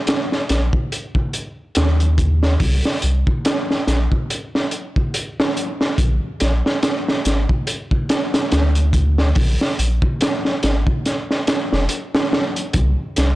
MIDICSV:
0, 0, Header, 1, 3, 480
1, 0, Start_track
1, 0, Tempo, 845070
1, 1479, Time_signature, 4, 2, 24, 8
1, 7585, End_track
2, 0, Start_track
2, 0, Title_t, "Sub bass"
2, 0, Program_c, 0, 38
2, 283, Note_on_c, 0, 34, 82
2, 402, Note_off_c, 0, 34, 0
2, 1002, Note_on_c, 0, 39, 105
2, 1461, Note_off_c, 0, 39, 0
2, 1480, Note_on_c, 0, 36, 101
2, 1600, Note_off_c, 0, 36, 0
2, 1723, Note_on_c, 0, 36, 74
2, 1842, Note_off_c, 0, 36, 0
2, 2202, Note_on_c, 0, 34, 87
2, 2321, Note_off_c, 0, 34, 0
2, 3400, Note_on_c, 0, 34, 94
2, 3520, Note_off_c, 0, 34, 0
2, 3644, Note_on_c, 0, 34, 81
2, 3762, Note_off_c, 0, 34, 0
2, 4122, Note_on_c, 0, 32, 91
2, 4241, Note_off_c, 0, 32, 0
2, 4842, Note_on_c, 0, 38, 112
2, 5301, Note_off_c, 0, 38, 0
2, 5320, Note_on_c, 0, 34, 97
2, 5440, Note_off_c, 0, 34, 0
2, 5561, Note_on_c, 0, 34, 72
2, 5681, Note_off_c, 0, 34, 0
2, 6042, Note_on_c, 0, 32, 85
2, 6161, Note_off_c, 0, 32, 0
2, 6661, Note_on_c, 0, 29, 102
2, 6749, Note_off_c, 0, 29, 0
2, 7240, Note_on_c, 0, 36, 105
2, 7360, Note_off_c, 0, 36, 0
2, 7484, Note_on_c, 0, 36, 77
2, 7585, Note_off_c, 0, 36, 0
2, 7585, End_track
3, 0, Start_track
3, 0, Title_t, "Drums"
3, 40, Note_on_c, 9, 42, 90
3, 49, Note_on_c, 9, 38, 109
3, 97, Note_off_c, 9, 42, 0
3, 105, Note_off_c, 9, 38, 0
3, 183, Note_on_c, 9, 38, 42
3, 240, Note_off_c, 9, 38, 0
3, 280, Note_on_c, 9, 42, 73
3, 286, Note_on_c, 9, 38, 47
3, 337, Note_off_c, 9, 42, 0
3, 343, Note_off_c, 9, 38, 0
3, 415, Note_on_c, 9, 36, 87
3, 472, Note_off_c, 9, 36, 0
3, 523, Note_on_c, 9, 42, 72
3, 580, Note_off_c, 9, 42, 0
3, 653, Note_on_c, 9, 36, 91
3, 709, Note_off_c, 9, 36, 0
3, 758, Note_on_c, 9, 42, 62
3, 814, Note_off_c, 9, 42, 0
3, 994, Note_on_c, 9, 42, 86
3, 1004, Note_on_c, 9, 38, 109
3, 1051, Note_off_c, 9, 42, 0
3, 1061, Note_off_c, 9, 38, 0
3, 1136, Note_on_c, 9, 42, 44
3, 1193, Note_off_c, 9, 42, 0
3, 1238, Note_on_c, 9, 36, 91
3, 1238, Note_on_c, 9, 42, 67
3, 1295, Note_off_c, 9, 36, 0
3, 1295, Note_off_c, 9, 42, 0
3, 1379, Note_on_c, 9, 38, 47
3, 1435, Note_off_c, 9, 38, 0
3, 1476, Note_on_c, 9, 46, 82
3, 1478, Note_on_c, 9, 36, 104
3, 1533, Note_off_c, 9, 46, 0
3, 1534, Note_off_c, 9, 36, 0
3, 1621, Note_on_c, 9, 38, 44
3, 1678, Note_off_c, 9, 38, 0
3, 1715, Note_on_c, 9, 42, 65
3, 1772, Note_off_c, 9, 42, 0
3, 1857, Note_on_c, 9, 36, 92
3, 1914, Note_off_c, 9, 36, 0
3, 1959, Note_on_c, 9, 42, 87
3, 1965, Note_on_c, 9, 38, 112
3, 2016, Note_off_c, 9, 42, 0
3, 2021, Note_off_c, 9, 38, 0
3, 2105, Note_on_c, 9, 38, 41
3, 2162, Note_off_c, 9, 38, 0
3, 2201, Note_on_c, 9, 38, 49
3, 2202, Note_on_c, 9, 42, 59
3, 2257, Note_off_c, 9, 38, 0
3, 2259, Note_off_c, 9, 42, 0
3, 2338, Note_on_c, 9, 36, 83
3, 2395, Note_off_c, 9, 36, 0
3, 2444, Note_on_c, 9, 42, 82
3, 2501, Note_off_c, 9, 42, 0
3, 2585, Note_on_c, 9, 38, 44
3, 2642, Note_off_c, 9, 38, 0
3, 2677, Note_on_c, 9, 42, 58
3, 2734, Note_off_c, 9, 42, 0
3, 2818, Note_on_c, 9, 36, 88
3, 2875, Note_off_c, 9, 36, 0
3, 2920, Note_on_c, 9, 42, 89
3, 2976, Note_off_c, 9, 42, 0
3, 3065, Note_on_c, 9, 38, 124
3, 3122, Note_off_c, 9, 38, 0
3, 3163, Note_on_c, 9, 42, 64
3, 3219, Note_off_c, 9, 42, 0
3, 3299, Note_on_c, 9, 38, 52
3, 3356, Note_off_c, 9, 38, 0
3, 3397, Note_on_c, 9, 36, 118
3, 3398, Note_on_c, 9, 42, 83
3, 3454, Note_off_c, 9, 36, 0
3, 3455, Note_off_c, 9, 42, 0
3, 3636, Note_on_c, 9, 42, 70
3, 3644, Note_on_c, 9, 38, 39
3, 3693, Note_off_c, 9, 42, 0
3, 3701, Note_off_c, 9, 38, 0
3, 3783, Note_on_c, 9, 38, 49
3, 3840, Note_off_c, 9, 38, 0
3, 3878, Note_on_c, 9, 42, 83
3, 3880, Note_on_c, 9, 38, 100
3, 3935, Note_off_c, 9, 42, 0
3, 3937, Note_off_c, 9, 38, 0
3, 4024, Note_on_c, 9, 38, 48
3, 4081, Note_off_c, 9, 38, 0
3, 4119, Note_on_c, 9, 42, 67
3, 4128, Note_on_c, 9, 38, 45
3, 4175, Note_off_c, 9, 42, 0
3, 4185, Note_off_c, 9, 38, 0
3, 4257, Note_on_c, 9, 36, 92
3, 4313, Note_off_c, 9, 36, 0
3, 4356, Note_on_c, 9, 42, 92
3, 4413, Note_off_c, 9, 42, 0
3, 4494, Note_on_c, 9, 36, 88
3, 4551, Note_off_c, 9, 36, 0
3, 4597, Note_on_c, 9, 42, 74
3, 4601, Note_on_c, 9, 38, 92
3, 4654, Note_off_c, 9, 42, 0
3, 4657, Note_off_c, 9, 38, 0
3, 4737, Note_on_c, 9, 38, 94
3, 4738, Note_on_c, 9, 42, 74
3, 4794, Note_off_c, 9, 38, 0
3, 4794, Note_off_c, 9, 42, 0
3, 4837, Note_on_c, 9, 42, 75
3, 4841, Note_on_c, 9, 38, 98
3, 4894, Note_off_c, 9, 42, 0
3, 4898, Note_off_c, 9, 38, 0
3, 4971, Note_on_c, 9, 42, 47
3, 5028, Note_off_c, 9, 42, 0
3, 5073, Note_on_c, 9, 36, 90
3, 5075, Note_on_c, 9, 42, 69
3, 5130, Note_off_c, 9, 36, 0
3, 5132, Note_off_c, 9, 42, 0
3, 5216, Note_on_c, 9, 38, 46
3, 5273, Note_off_c, 9, 38, 0
3, 5312, Note_on_c, 9, 46, 78
3, 5317, Note_on_c, 9, 36, 118
3, 5368, Note_off_c, 9, 46, 0
3, 5374, Note_off_c, 9, 36, 0
3, 5460, Note_on_c, 9, 38, 46
3, 5517, Note_off_c, 9, 38, 0
3, 5560, Note_on_c, 9, 42, 60
3, 5617, Note_off_c, 9, 42, 0
3, 5692, Note_on_c, 9, 36, 97
3, 5749, Note_off_c, 9, 36, 0
3, 5797, Note_on_c, 9, 42, 81
3, 5806, Note_on_c, 9, 38, 98
3, 5854, Note_off_c, 9, 42, 0
3, 5863, Note_off_c, 9, 38, 0
3, 5936, Note_on_c, 9, 38, 36
3, 5993, Note_off_c, 9, 38, 0
3, 6036, Note_on_c, 9, 42, 73
3, 6043, Note_on_c, 9, 38, 52
3, 6093, Note_off_c, 9, 42, 0
3, 6099, Note_off_c, 9, 38, 0
3, 6172, Note_on_c, 9, 36, 97
3, 6229, Note_off_c, 9, 36, 0
3, 6279, Note_on_c, 9, 42, 57
3, 6283, Note_on_c, 9, 38, 37
3, 6336, Note_off_c, 9, 42, 0
3, 6340, Note_off_c, 9, 38, 0
3, 6422, Note_on_c, 9, 38, 38
3, 6479, Note_off_c, 9, 38, 0
3, 6517, Note_on_c, 9, 42, 75
3, 6521, Note_on_c, 9, 38, 103
3, 6573, Note_off_c, 9, 42, 0
3, 6578, Note_off_c, 9, 38, 0
3, 6660, Note_on_c, 9, 38, 48
3, 6717, Note_off_c, 9, 38, 0
3, 6753, Note_on_c, 9, 42, 87
3, 6809, Note_off_c, 9, 42, 0
3, 6899, Note_on_c, 9, 38, 119
3, 6956, Note_off_c, 9, 38, 0
3, 7003, Note_on_c, 9, 38, 97
3, 7060, Note_off_c, 9, 38, 0
3, 7136, Note_on_c, 9, 42, 64
3, 7193, Note_off_c, 9, 42, 0
3, 7233, Note_on_c, 9, 42, 91
3, 7238, Note_on_c, 9, 36, 116
3, 7290, Note_off_c, 9, 42, 0
3, 7294, Note_off_c, 9, 36, 0
3, 7477, Note_on_c, 9, 42, 67
3, 7486, Note_on_c, 9, 38, 42
3, 7534, Note_off_c, 9, 42, 0
3, 7543, Note_off_c, 9, 38, 0
3, 7585, End_track
0, 0, End_of_file